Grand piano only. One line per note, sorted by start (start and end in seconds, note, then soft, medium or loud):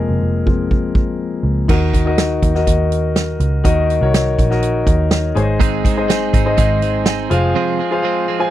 0.00 0.46 F3 soft
0.00 0.47 G#3 medium
0.00 1.71 A#3 medium
0.00 0.47 C4 soft
0.00 1.16 G#4 medium
0.00 1.70 A#4 medium
0.46 0.68 F3 soft
0.46 0.69 G#3 soft
0.46 0.69 C4 soft
1.68 2.38 D#3 medium
1.68 1.97 D#4 medium
1.68 1.98 F#4 medium
1.68 1.98 A#4 medium
1.68 1.98 D#5 medium
2.05 2.44 D#4 medium
2.05 2.44 F#4 medium
2.05 2.44 A#4 medium
2.05 2.44 D#5 medium
2.55 3.31 D#4 medium
2.55 3.31 F#4 medium
2.55 3.31 A#4 medium
2.55 3.31 D#5 medium
3.64 4.34 D#3 medium
3.64 3.93 D#4 medium
3.64 3.93 F#4 medium
3.64 3.93 A#4 medium
3.64 3.93 D#5 medium
4.01 4.39 D#4 medium
4.01 4.40 F#4 medium
4.01 4.40 A#4 medium
4.01 4.40 C#5 medium
4.50 5.26 D#4 medium
4.50 5.26 F#4 medium
4.50 5.27 A#4 medium
4.50 5.27 D#5 medium
5.35 6.05 G#2 medium
5.35 5.84 D#4 medium
5.35 5.84 G#4 medium
5.35 5.85 C5 medium
5.35 5.42 C#5 medium
5.42 5.88 D#5 medium
5.96 6.34 D#4 medium
5.96 6.35 G#4 medium
5.96 6.35 C5 medium
5.96 6.35 D#5 medium
6.45 7.21 D#4 medium
6.45 7.22 G#4 medium
6.45 7.22 C5 medium
6.45 7.22 D#5 medium
7.30 7.79 F4 medium
7.30 7.79 G#4 medium
7.30 7.79 C5 medium
7.30 7.80 F5 medium
7.91 8.29 F4 medium
7.91 8.30 G#4 medium
7.91 8.30 C5 medium
7.91 8.30 F5 medium
8.39 8.50 F4 medium
8.39 8.50 G#4 medium
8.39 8.50 C5 medium
8.39 8.50 G#5 loud